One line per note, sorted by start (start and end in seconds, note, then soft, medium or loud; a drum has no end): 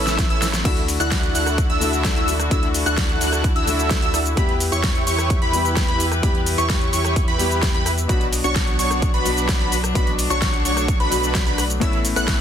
0.00 0.28 A1 loud
0.00 0.61 A3 medium
0.00 0.61 B3 medium
0.00 0.27 C#4 loud
0.00 0.61 C#4 medium
0.00 0.27 E4 medium
0.00 0.27 A4 medium
0.00 0.27 B4 medium
0.00 0.27 E5 loud
0.00 0.27 E6 loud
0.07 snare medium
0.07 shaker soft
0.19 kick loud
0.19 snare medium
0.19 closed hi-hat loud
0.19 shaker soft
0.30 0.63 A1 medium
0.30 0.47 C#4 medium
0.30 0.47 E4 medium
0.30 0.47 A4 medium
0.30 0.47 B4 medium
0.30 0.47 E5 loud
0.30 0.47 E6 loud
0.30 closed hi-hat soft
0.42 snare loud
0.42 open hi-hat medium
0.42 shaker medium
0.54 snare medium
0.54 closed hi-hat soft
0.54 shaker soft
0.64 0.98 D2 loud
0.64 1.78 D3 medium
0.64 4.33 D3 medium
0.64 1.78 A3 medium
0.64 4.33 D4 medium
0.64 0.82 D4 medium
0.64 1.79 D4 medium
0.64 8.05 E4 medium
0.64 0.82 E4 medium
0.64 1.79 E4 medium
0.64 4.33 F#4 loud
0.64 0.82 F#4 medium
0.64 1.79 F#4 loud
0.64 0.82 A4 medium
0.64 0.82 E5 medium
0.64 0.82 E6 medium
0.64 kick loud
0.64 closed hi-hat loud
0.64 crash medium
0.64 shaker soft
0.77 closed hi-hat soft
0.88 open hi-hat loud
0.88 shaker medium
1.00 1.33 D2 loud
1.00 1.32 D4 loud
1.00 1.32 E4 medium
1.00 1.32 F#4 medium
1.00 1.32 A4 loud
1.00 1.32 F#5 loud
1.00 1.32 F#6 loud
1.00 closed hi-hat soft
1.00 shaker soft
1.12 kick loud
1.12 snare loud
1.12 closed hi-hat medium
1.12 shaker soft
1.23 closed hi-hat soft
1.35 1.67 D2 loud
1.35 1.67 D4 medium
1.35 1.67 E4 medium
1.35 1.67 F#4 medium
1.35 1.67 A4 medium
1.35 1.67 F#5 medium
1.35 1.67 F#6 medium
1.35 open hi-hat medium
1.35 shaker medium
1.47 cross-stick medium
1.47 closed hi-hat soft
1.47 shaker soft
1.58 kick loud
1.58 closed hi-hat loud
1.58 shaker soft
1.70 2.14 D2 loud
1.70 2.13 D4 medium
1.70 2.13 E4 medium
1.70 2.13 F#4 medium
1.70 2.13 A4 medium
1.70 2.13 E5 loud
1.70 2.13 E6 loud
1.70 closed hi-hat soft
1.80 2.48 D3 medium
1.80 2.48 A3 medium
1.80 2.48 D4 medium
1.80 2.49 E4 medium
1.80 2.49 F#4 medium
1.80 open hi-hat loud
1.80 shaker medium
1.93 closed hi-hat soft
1.93 shaker soft
2.05 kick loud
2.05 snare loud
2.05 closed hi-hat loud
2.05 shaker soft
2.16 2.49 D2 loud
2.16 2.33 D4 medium
2.16 2.33 E4 medium
2.16 2.33 F#4 medium
2.16 2.33 A4 medium
2.16 2.33 E5 loud
2.16 2.33 E6 loud
2.16 closed hi-hat soft
2.28 open hi-hat loud
2.28 shaker medium
2.40 cross-stick medium
2.40 closed hi-hat soft
2.40 shaker soft
2.50 2.84 D2 loud
2.50 3.64 D3 medium
2.50 3.64 A3 medium
2.50 2.68 D4 medium
2.50 3.65 D4 medium
2.50 2.68 E4 medium
2.50 3.65 E4 medium
2.50 2.68 F#4 medium
2.50 3.65 F#4 medium
2.50 2.68 A4 medium
2.50 2.68 E5 medium
2.50 2.68 E6 medium
2.50 kick loud
2.50 closed hi-hat medium
2.50 shaker soft
2.63 closed hi-hat soft
2.74 open hi-hat loud
2.74 shaker medium
2.86 3.19 D2 loud
2.86 3.18 D4 loud
2.86 3.18 E4 medium
2.86 3.18 F#4 loud
2.86 3.18 A4 medium
2.86 3.18 F#5 loud
2.86 3.18 F#6 loud
2.86 closed hi-hat soft
2.86 shaker soft
2.98 kick loud
2.98 snare loud
2.98 closed hi-hat medium
2.98 shaker soft
3.09 closed hi-hat soft
3.21 3.53 D2 medium
3.21 3.53 D4 medium
3.21 3.53 E4 medium
3.21 3.53 F#4 medium
3.21 3.53 A4 medium
3.21 3.53 F#5 medium
3.21 3.53 F#6 medium
3.21 open hi-hat medium
3.21 shaker medium
3.33 cross-stick medium
3.33 closed hi-hat soft
3.33 shaker soft
3.44 kick loud
3.44 closed hi-hat medium
3.44 shaker soft
3.56 4.00 D2 loud
3.56 3.99 D4 loud
3.56 3.99 E4 medium
3.56 4.00 F#4 medium
3.56 3.99 A4 medium
3.56 3.99 E5 loud
3.56 4.00 E6 loud
3.56 closed hi-hat soft
3.66 4.34 D3 medium
3.66 4.34 A3 medium
3.66 4.34 D4 medium
3.66 4.35 E4 medium
3.66 4.35 F#4 medium
3.66 open hi-hat loud
3.66 shaker medium
3.79 closed hi-hat soft
3.79 shaker soft
3.91 kick loud
3.91 snare loud
3.91 closed hi-hat medium
3.91 shaker soft
4.02 4.35 D2 loud
4.02 4.19 D4 medium
4.02 4.19 E4 medium
4.02 4.19 F#4 medium
4.02 4.19 A4 medium
4.02 4.19 E5 loud
4.02 4.19 E6 loud
4.02 closed hi-hat soft
4.14 cross-stick medium
4.14 open hi-hat medium
4.14 shaker medium
4.26 closed hi-hat soft
4.26 shaker soft
4.36 4.70 E2 loud
4.36 8.06 E3 medium
4.36 5.50 G3 medium
4.36 5.50 B3 medium
4.36 4.54 E4 medium
4.36 5.51 E4 medium
4.36 4.54 G4 medium
4.36 8.06 G4 medium
4.36 5.51 G4 loud
4.36 4.54 B4 medium
4.36 8.06 B4 loud
4.36 4.54 B5 medium
4.36 kick loud
4.36 closed hi-hat medium
4.36 shaker soft
4.49 closed hi-hat soft
4.60 open hi-hat loud
4.60 shaker medium
4.72 5.05 E2 loud
4.72 5.04 E4 loud
4.72 5.04 G4 medium
4.72 5.04 C#5 loud
4.72 5.04 C#6 loud
4.72 closed hi-hat soft
4.72 shaker soft
4.84 kick loud
4.84 snare loud
4.84 closed hi-hat medium
4.84 shaker soft
4.95 closed hi-hat soft
5.07 5.39 E2 loud
5.07 5.39 E4 medium
5.07 5.39 G4 medium
5.07 5.39 C#5 medium
5.07 5.39 C#6 medium
5.07 open hi-hat loud
5.07 shaker medium
5.19 cross-stick medium
5.19 closed hi-hat soft
5.19 shaker soft
5.30 kick loud
5.30 closed hi-hat medium
5.30 shaker soft
5.42 5.86 E2 loud
5.42 5.86 E4 loud
5.42 5.86 G4 medium
5.42 5.86 B4 loud
5.42 5.86 B5 loud
5.42 closed hi-hat soft
5.52 6.20 G3 medium
5.52 6.20 B3 medium
5.52 6.21 E4 medium
5.52 6.21 G4 medium
5.52 open hi-hat loud
5.52 shaker medium
5.65 closed hi-hat soft
5.65 shaker soft
5.77 kick loud
5.77 snare loud
5.77 closed hi-hat medium
5.77 shaker soft
5.88 6.21 E2 loud
5.88 6.05 E4 medium
5.88 6.05 G4 medium
5.88 6.05 B4 medium
5.88 6.05 B5 loud
5.88 closed hi-hat soft
6.00 open hi-hat loud
6.00 shaker medium
6.12 cross-stick medium
6.12 closed hi-hat soft
6.12 shaker soft
6.22 6.56 E2 loud
6.22 7.36 G3 medium
6.22 7.37 B3 medium
6.22 6.40 E4 medium
6.22 7.37 E4 medium
6.22 6.40 G4 medium
6.22 7.37 G4 medium
6.22 6.40 B4 medium
6.22 6.40 B5 medium
6.22 kick loud
6.22 closed hi-hat medium
6.22 shaker soft
6.35 closed hi-hat soft
6.46 open hi-hat loud
6.46 shaker medium
6.58 6.91 E2 loud
6.58 6.90 E4 loud
6.58 6.90 G4 medium
6.58 6.90 C#5 loud
6.58 6.90 C#6 loud
6.58 closed hi-hat soft
6.58 shaker soft
6.70 kick loud
6.70 snare loud
6.70 closed hi-hat medium
6.70 shaker soft
6.81 closed hi-hat soft
6.93 7.26 E2 loud
6.93 7.25 E4 medium
6.93 7.25 G4 medium
6.93 7.25 C#5 medium
6.93 7.25 C#6 medium
6.93 open hi-hat loud
6.93 shaker medium
7.05 cross-stick medium
7.05 closed hi-hat soft
7.05 shaker soft
7.16 kick loud
7.16 closed hi-hat medium
7.16 shaker soft
7.28 7.72 E2 loud
7.28 7.72 E4 loud
7.28 7.72 G4 medium
7.28 7.72 B4 loud
7.28 7.72 B5 loud
7.28 closed hi-hat soft
7.38 8.06 G3 medium
7.38 8.06 B3 medium
7.38 8.07 E4 medium
7.38 8.07 G4 medium
7.38 open hi-hat loud
7.38 shaker medium
7.51 closed hi-hat soft
7.51 shaker soft
7.63 kick loud
7.63 snare loud
7.63 closed hi-hat medium
7.63 shaker soft
7.74 8.07 E2 loud
7.74 7.91 E4 medium
7.74 7.91 G4 medium
7.74 7.91 B4 loud
7.74 7.91 B5 loud
7.74 closed hi-hat soft
7.86 cross-stick medium
7.86 open hi-hat loud
7.86 shaker medium
7.98 closed hi-hat soft
7.98 shaker soft
8.08 8.42 B1 loud
8.08 9.22 B2 medium
8.08 9.22 F#3 medium
8.08 11.78 F#3 medium
8.08 9.93 B3 medium
8.08 9.23 B3 medium
8.08 8.26 D4 medium
8.08 11.78 D4 loud
8.08 9.23 D4 medium
8.08 8.26 F#4 medium
8.08 9.23 F#4 loud
8.08 8.26 B4 medium
8.08 8.26 B5 medium
8.08 kick loud
8.08 closed hi-hat medium
8.08 shaker soft
8.21 closed hi-hat soft
8.33 open hi-hat loud
8.33 shaker medium
8.44 8.77 B1 loud
8.44 8.76 D4 loud
8.44 8.76 F#4 medium
8.44 8.76 C#5 loud
8.44 8.76 C#6 loud
8.44 closed hi-hat soft
8.44 shaker soft
8.56 kick loud
8.56 snare loud
8.56 closed hi-hat medium
8.56 shaker soft
8.67 closed hi-hat soft
8.79 9.12 B1 loud
8.79 9.11 D4 medium
8.79 9.11 F#4 medium
8.79 9.11 C#5 loud
8.79 9.11 C#6 medium
8.79 open hi-hat medium
8.79 shaker medium
8.91 cross-stick medium
8.91 closed hi-hat soft
8.91 shaker soft
9.02 kick loud
9.02 closed hi-hat medium
9.02 shaker soft
9.14 9.58 B1 loud
9.14 9.58 D4 loud
9.14 9.58 F#4 medium
9.14 9.58 B4 loud
9.14 9.58 B5 loud
9.14 closed hi-hat soft
9.24 9.92 B2 medium
9.24 9.92 F#3 medium
9.24 9.93 B3 medium
9.24 9.93 D4 medium
9.24 9.93 F#4 medium
9.24 open hi-hat loud
9.24 shaker medium
9.37 closed hi-hat soft
9.37 shaker soft
9.49 kick loud
9.49 snare loud
9.49 closed hi-hat medium
9.49 shaker soft
9.60 9.93 B1 loud
9.60 9.77 D4 medium
9.60 9.77 F#4 medium
9.60 9.77 B4 loud
9.60 9.77 B5 medium
9.60 closed hi-hat soft
9.72 open hi-hat loud
9.72 shaker medium
9.84 cross-stick medium
9.84 closed hi-hat soft
9.84 shaker soft
9.94 10.28 B1 loud
9.94 11.08 B2 medium
9.94 11.08 F#3 medium
9.94 11.80 A3 medium
9.94 11.09 B3 medium
9.94 10.12 D4 medium
9.94 11.09 D4 medium
9.94 10.12 F#4 medium
9.94 11.09 F#4 medium
9.94 10.12 B4 medium
9.94 10.12 B5 medium
9.94 kick loud
9.94 closed hi-hat medium
9.94 shaker soft
10.07 closed hi-hat soft
10.19 open hi-hat loud
10.19 shaker medium
10.30 10.63 B1 loud
10.30 10.62 D4 loud
10.30 10.62 F#4 medium
10.30 10.62 C#5 loud
10.30 10.62 C#6 loud
10.30 closed hi-hat soft
10.30 shaker soft
10.42 kick loud
10.42 snare loud
10.42 closed hi-hat medium
10.42 shaker soft
10.54 closed hi-hat soft
10.65 10.98 B1 medium
10.65 10.97 D4 medium
10.65 10.97 F#4 medium
10.65 10.97 C#5 medium
10.65 10.97 C#6 medium
10.65 open hi-hat medium
10.65 shaker medium
10.77 cross-stick medium
10.77 closed hi-hat soft
10.77 shaker soft
10.88 kick loud
10.88 closed hi-hat medium
10.88 shaker soft
11.00 11.44 B1 loud
11.00 11.44 D4 loud
11.00 11.44 F#4 medium
11.00 11.44 B4 loud
11.00 11.44 B5 loud
11.00 closed hi-hat soft
11.10 11.78 B2 medium
11.10 11.78 F#3 medium
11.10 11.79 B3 medium
11.10 11.79 D4 medium
11.10 11.79 F#4 medium
11.10 open hi-hat loud
11.10 shaker medium
11.23 closed hi-hat soft
11.23 shaker soft
11.35 kick loud
11.35 snare loud
11.35 closed hi-hat medium
11.35 shaker soft
11.46 11.79 B1 loud
11.46 11.63 D4 medium
11.46 11.63 F#4 medium
11.46 11.63 B4 medium
11.46 11.63 B5 loud
11.46 closed hi-hat soft
11.58 cross-stick medium
11.58 open hi-hat medium
11.58 shaker medium
11.70 closed hi-hat soft
11.70 shaker soft
11.80 12.14 A1 loud
11.80 12.41 A2 medium
11.80 12.41 A3 medium
11.80 12.41 B3 medium
11.80 11.98 C#4 medium
11.80 12.41 C#4 loud
11.80 12.41 C#4 medium
11.80 11.98 E4 medium
11.80 12.41 E4 loud
11.80 11.98 A4 medium
11.80 11.98 B4 medium
11.80 11.98 E5 medium
11.80 11.98 E6 medium
11.80 kick loud
11.80 closed hi-hat loud
11.80 shaker soft
11.93 closed hi-hat soft
12.05 open hi-hat loud
12.05 shaker medium
12.16 12.41 A1 loud
12.16 12.41 C#4 loud
12.16 12.41 E4 medium
12.16 12.41 A4 loud
12.16 12.41 B4 medium
12.16 12.41 F#5 loud
12.16 12.41 F#6 loud
12.16 closed hi-hat soft
12.16 shaker soft
12.28 kick loud
12.28 snare loud
12.28 closed hi-hat loud
12.28 shaker soft